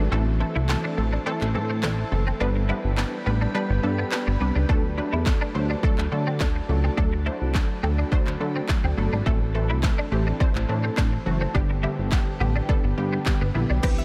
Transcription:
Already playing: A4
0.11 A1 E3 A3 C4 E4 A4 C5 A5
0.40 E3 A3 C4 A4, muted clean electric guitar stroke
0.56 C2 E4
0.69 E3 A3 C4 A4, snare, clap
0.84 D4
0.97 A1 E3 A3 C4 A4, muted clean electric guitar stroke
1.13 D4
1.26 E3 A3 C4 D4 A4
1.41 A1, clap
1.55 A2 E3 A3 C4 A4, muted clean electric guitar stroke
1.70 C4
1.83 A1 E3 A3 C4 D4 A4, snare, clap
1.98 muted clean electric guitar stroke
2.11 F#1 E3 A3 C4 A4
2.27 C4
2.40 G1 G3 B3 D4 G4 B4 D5 B5
2.56 muted clean electric guitar stroke
2.69 G3 B3 D4 E4 B4
2.84 G1
2.97 G3 B3 D4 B4, muted clean electric guitar stroke, snare, clap
3.26 A1 G3 B3 D4 B4
3.41 D4
3.54 G3 B3 D4 B4
3.70 G1, muted clean electric guitar stroke
3.83 G2 G3 B3 D4 A4
3.98 B3
4.12 G3 B3 D4 B4, snare, clap
4.27 G1 B3
4.40 C2 G3 B3 D4 B4, muted clean electric guitar stroke
4.56 C#2 D4
4.69 D2 F#3 A3 D4 F#4 A4 A5, kick
4.97 F#3 A3 D4 B4, muted clean electric guitar stroke
5.13 E2 E4
5.26 F#3 A3 D4 A4, kick, snare, clap
5.41 D4
5.55 D2 F#3 A3 D4 C5, muted clean electric guitar stroke
5.70 D4
5.83 F#3 A3 D4 A4, kick
5.98 D2, clap
6.12 D3 F#3 A3 D4 A4, muted clean electric guitar stroke
6.27 C4
6.40 D2 F#3 A3 D4 A4, kick, snare, clap
6.56 muted clean electric guitar stroke
6.69 C#2 F#3 A3 D4 A4
6.84 C4
6.97 D2 F#3 A3 D4 A4 B5, kick
7.13 muted clean electric guitar stroke
7.26 F#3 A3 D4 E4 C5
7.41 C2
7.54 F#3 A3 D4 A4, muted clean electric guitar stroke, kick, snare, clap
7.83 D2 F#3 A3 C4 D4 A4
7.98 D4
8.12 F#3 A3 D4 C5, kick
8.27 D2, muted clean electric guitar stroke, clap
8.40 D3 F#3 A3 D4 A4
8.56 C4
8.69 F#3 A3 D4 A4, kick, snare, clap
8.84 D2 C4
8.97 G1 F#3 A3 D4 A4, muted clean electric guitar stroke
9.13 G#1 D4
9.26 A1 E3 A3 C4 E4 A4 C5 A5, kick
9.54 E3 A3 C4 A4, muted clean electric guitar stroke
9.70 C2 E4
9.83 E3 A3 C4 A4, kick, snare, clap
9.98 D4
10.12 A1 E3 A3 C4 G4, muted clean electric guitar stroke
10.27 D4
10.40 E3 A3 C4 D4 C5, kick
10.55 A1, clap
10.69 A2 E3 A3 C4 D4, muted clean electric guitar stroke
10.84 C4
10.97 A1 E3 A3 C4 D4 A4, kick, snare, clap
11.12 muted clean electric guitar stroke
11.26 F#1 E3 A3 C4 F#4
11.41 C4
11.54 G1 D3 G3 B3 D4 G4 B4 G5, kick
11.70 muted clean electric guitar stroke
11.83 D3 G3 B3 E4 G4
11.98 G1
12.11 D3 G3 B3 G4, muted clean electric guitar stroke, kick, snare, clap
12.40 A1 D3 G3 B3 G4
12.56 D4
12.69 D3 G3 B3 D4 A4, kick
12.84 G1, muted clean electric guitar stroke
12.97 G2 D3 G3 B3 G4
13.13 B3
13.26 D3 G3 B3 G4, kick, snare, clap
13.41 G1 B3
13.54 A#1 D3 G3 B3 E4, muted clean electric guitar stroke
13.70 B1 D4
13.83 C2 E3 B3 C4 E4 G4 B4 C5 G5, kick, crash, shaker
13.98 E5, shaker

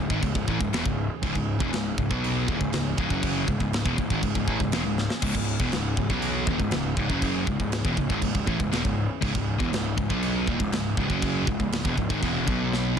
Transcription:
Already playing: E3 C#4 G#4
0.10 G#1 G#2 D#3, kick
0.22 C#1 C#2 G#2, kick, china
0.35 C#1 C#2 G#2, kick
0.47 A1 A2 E3, kick
0.60 C#1 C#2 G#2, kick
0.73 E1 E2 B2, snare, china
0.86 C#1 C#2 G#2, kick
1.22 C#1 C#2 G#2, kick, china
1.35 C#1 C#2 G#2, kick
1.59 E1 E2 B2, kick
1.73 C#1 C#2 G#2, snare, china
1.98 C#1 C#2 G#2, kick
2.10 B1 B2 F#3 B3, kick
2.24 china
2.47 D#1 D#2 A#2, kick
2.60 C#1 C#2 G#2, kick
2.73 C#1 C#2 G#2, snare, china
2.97 C#1 C#2 G#2, kick
3.09 F#1 F#2 C#3 F#3, kick
3.23 kick, china
3.47 C#1 C#2 G#2, kick
3.60 C#1 C#2 G#2, kick
3.73 snare, china
3.85 E1 E2 B2, kick
3.98 C#1 C#2 G#2, kick
4.10 G#1 G#2 D#3, kick
4.23 C#1 C#2 G#2, kick, china
4.35 C#1 C#2 G#2, kick
4.48 A1 A2 E3, kick
4.60 C#1 C#2 G#2, kick
4.72 E1 E2 B2, snare, china
4.85 C#1 C#2 G#2
4.98 snare
5.10 snare
5.22 C#1 C#2 G#2, kick, crash, china
5.35 C#1 C#2 G#2, kick
5.60 E1 E2 B2, kick
5.72 C#1 C#2 G#2, snare, china
5.97 C#1 C#2 G#2, kick
6.10 B1 B2 F#3 B3, kick
6.22 china
6.47 D#1 D#2 A#2, kick
6.60 C#1 C#2 G#2, kick
6.71 C#1 C#2 G#2, snare, china
6.97 C#1 C#2 G#2, kick
7.10 F#1 F#2 C#3 F#3, kick
7.22 kick, china
7.47 C#1 C#2 G#2, kick
7.60 C#1 C#2 G#2, kick
7.72 snare, china
7.85 E1 E2 B2, kick
7.97 C#1 C#2 G#2, kick
8.10 G#1 G#2 D#3, kick
8.22 C#1 C#2 G#2, kick, china
8.35 C#1 C#2 G#2, kick
8.47 A1 A2 E3, kick
8.59 C#1 C#2 G#2, kick
8.72 E1 E2 B2, snare, china
8.85 C#1 C#2 G#2, kick
9.22 C#1 C#2 G#2, kick, china
9.34 C#1 C#2 G#2, kick
9.60 E1 E2 B2, kick
9.72 C#1 C#2 G#2, snare, china
9.97 C#1 C#2 G#2, kick
10.10 B1 B2 F#3 B3, kick
10.23 china
10.47 D#1 D#2 A#2, kick
10.60 C#1 C#2 G#2, kick
10.72 C#1 C#2 G#2, snare, china
10.97 C#1 C#2 G#2, kick
11.10 F#1 F#2 C#3 F#3, kick
11.22 kick, china
11.47 C#1 C#2 G#2, kick
11.60 C#1 C#2 G#2, kick
11.72 snare, china
11.84 E1 E2 B2, kick
11.97 C#1 C#2 G#2, kick
12.09 G#1 G#2 D#3, kick
12.22 E1 E2 B2 E3, kick, china
12.47 B1 B2 F#3 B3 B4, kick
12.73 snare

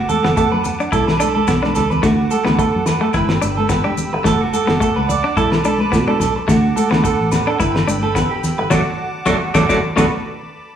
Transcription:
Already playing: F#5 A5 D6
0.09 A4, high conga, low conga, maracas
0.24 F#1 B3, snare
0.37 A3 A4, kick, low conga, maracas
0.52 F#2 B4
0.64 muted clean electric guitar stroke, low conga, maracas
0.80 D4, maracas
0.92 B1 E4 A4 B5 D6, kick, high conga, maracas
1.07 B4, snare
1.20 D4 A4, high conga, maracas
1.35 A4, high conga
1.47 B1 B3, kick, snare, high conga, maracas
1.62 D4 B4, snare, high conga
1.75 C#2 A4, snare, low conga, maracas
1.90 B4, low conga, maracas
2.03 D2 A3 F#4 F#5, kick, snare, maracas
2.31 A4, high conga, maracas
2.45 D2 B3 B4, snare
2.59 A3 A4, kick, maracas
2.75 F#2
2.86 B4, snare, low conga, maracas
3.01 A3 A4
3.13 G1 E4 B4 G5 B5 E6, kick, snare, high conga, maracas
3.29 B4, snare
3.42 G1 D4, high conga, maracas
3.57 A4, high conga
3.69 B3 B4, kick, snare, maracas
3.84 E1 D4 G4, high conga
3.98 low conga, maracas
4.13 G1 B4
4.24 F#1 A3 A4 F#5 A5 D6, kick, snare, maracas
4.41 F#4
4.54 A4, high conga, maracas
4.67 F#1 B3, snare
4.80 A3 A4, kick, maracas
4.96 C#2 B4
5.09 D5, low conga, maracas
5.24 D4
5.37 B1 E4 A4 B5 D6, kick, snare, high conga, maracas
5.52 B4, snare
5.64 D4 A4, high conga, maracas
5.79 B4, high conga
5.92 B2 B3, kick, snare, maracas
6.07 D4 A4, high conga
6.20 B1 A4, snare, low conga, maracas
6.36 muted clean electric guitar stroke
6.48 D2 A3 F#4 F#5, kick, snare, maracas
6.76 A4, high conga, maracas
6.91 D2 B3 B4, snare
7.04 A4, muted clean electric guitar stroke, kick, maracas
7.19 A1
7.32 B4, snare, low conga, maracas
7.47 D4 A4
7.59 G1 E4 B4 G5 B5 E6, kick, high conga, maracas
7.75 B4, snare
7.88 G1 D4, high conga, maracas
8.03 A4, high conga
8.15 B3 B4, kick, snare, maracas
8.31 E1 G4
8.44 snare, low conga, maracas
8.58 G1 B4
8.70 F#1 F#3 A3 D4 F#4 A4 D5 F#5 A5 D6, kick, snare, low conga, maracas
9.26 F#1 F#3 A3 D4 F#4 A4 D5, kick, snare, low conga, maracas
9.54 F#1 F#3 A3 D4 F#4 A4 D5, kick, snare, low conga, maracas
9.69 F#1 F#3 A3 D4 F#4 A4 D5, kick, snare, low conga, maracas
9.81 B5
9.96 B1 A3 B3 D4 F#4 A4 B4, kick, snare, low conga, maracas

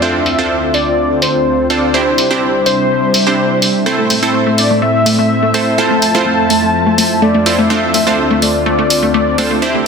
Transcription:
0.02 D2 D3 C4 D4 F4 A4 C5 E5
0.26 open hi-hat
0.39 C4 D4 F4 A4 C5
0.74 D5, open hi-hat
1.22 C5, open hi-hat
1.70 C4 D4 F4 A4 C5 D5, open hi-hat
1.94 C3 G3 C4 D4 E4 G4 C5 E5
2.18 open hi-hat
2.31 C4 D4 E4 G4 C5
2.66 C5, open hi-hat
3.14 open hi-hat
3.27 C4 D4 E4 G4 C5
3.62 open hi-hat
3.86 A2 A3 C4 E4 A4 C5
3.99 A3
4.10 A3, open hi-hat
4.23 A3 C4 E4 A4 C5
4.34 A3
4.47 A3
4.58 D5, open hi-hat
4.71 A3
4.82 A3 E5
5.06 A3, open hi-hat
5.19 A3 E5
5.43 A3
5.54 A3 C4 E4 A4 C5, open hi-hat
5.78 F2 F3 A3 C4 E4 F4 A4 C5 A5
5.91 A3
6.02 A5, open hi-hat
6.15 A3 C4 E4 F4 A4 C5
6.26 A3
6.50 A3, open hi-hat
6.63 A3
6.87 A3
6.98 A3, open hi-hat
7.22 A3 D5
7.35 A3
7.46 C4 E4 F4 A4 C5, open hi-hat
7.59 A3
7.70 D2 D3 A3 C4 D4 F4 A4 C5 E5
7.94 A3, open hi-hat
8.07 A3 C4 D4 F4 A4 C5
8.31 A3
8.42 A3 D5, open hi-hat
8.66 A3 D5
8.79 A3
8.90 open hi-hat
9.03 A3
9.14 A3 D5
9.38 A3 C4 D4 F4 A4 C5, open hi-hat
9.51 A3
9.62 C2 C3 C4 D4 E4 G4 C5 E5
9.75 A3

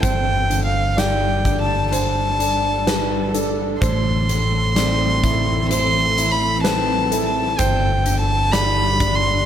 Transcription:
Already playing: A4
0.02 G1 G2 G3 D4 C5 G5, kick, closed hi-hat
0.50 D3, closed hi-hat
0.66 F5
0.97 G3 D5 G5, snare, closed hi-hat
1.45 D4, kick, closed hi-hat
1.61 A5
1.92 D3 C5 A5, closed hi-hat
2.39 D4, closed hi-hat
2.87 G3 B4, snare, closed hi-hat
3.34 D4 A4, closed hi-hat
3.81 A1 A2 E3 C4 C5 C6, kick, closed hi-hat
4.29 A3, closed hi-hat
4.76 C4 D5, snare, closed hi-hat
5.24 E4, kick, closed hi-hat
5.69 A3 C5 C6, closed hi-hat
6.18 E4, closed hi-hat
6.31 B5
6.63 C4 B4 A5, snare, closed hi-hat
7.12 E4 A4, closed hi-hat
7.26 A5
7.58 G1 G2 G3 D4 C5 G5, kick, closed hi-hat
8.06 D3, closed hi-hat
8.20 A5
8.52 G3 D5 B5, snare, closed hi-hat
9.00 D4, kick, closed hi-hat
9.15 C6

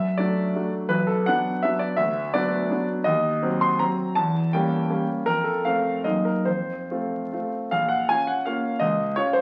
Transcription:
Already playing: F#2 E5
0.18 F#3 A3 D4 D5
0.55 F#3 A3 D4
0.89 B1 B4
1.07 A4
1.26 F#3 B3 D4 F#5
1.63 F#3 B3 D4 E5
1.79 D5
1.96 D2 E5
2.34 F#3 B3 D4 D5
2.70 F#3 B3 D4
3.04 D#2 D#5
3.43 F#3 C4
3.61 C6
3.79 F#3 C4 A#5
4.15 E2 A5
4.53 G3 A#3 C#4 G5
4.90 G3 A#3 C#4
5.26 F2 A#4
5.44 A4
5.65 A3 C4 F5
6.04 F#2 A#3 D#4 D#5
6.25 A#4
6.45 F2 C5
6.91 A3 C4 F4
7.33 A3 C4 F4
7.71 A#1 F5
7.89 F#5
8.09 C#4 F4 G#5
8.27 F#5
8.45 A#3 C#4 F4 F5
8.80 C#2 D#5
9.16 C#4 F4 C#5
9.33 C5

